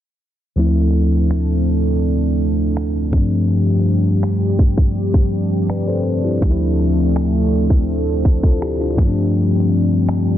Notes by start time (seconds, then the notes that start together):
0.56 D2 F3 A3 C4 D4 E4 A4
1.31 finger snap
2.77 finger snap
3.12 G2 F3 G3 A3 C4 D4 G4, kick
4.23 finger snap
4.59 kick
4.77 kick
5.14 kick
5.70 B4 D5, finger snap
5.88 A4 C5
6.24 E4 G4
6.41 D2 F3 A3 C4 D#4 A4, kick
6.51 E4
7.16 finger snap
7.70 kick
8.25 A4 C5, kick
8.43 F4 A4, kick
8.62 E4 G4, finger snap
8.80 D4 F4
8.97 G2 F3 G3 A3 C4 C#4 G4, kick
9.06 D4
10.09 finger snap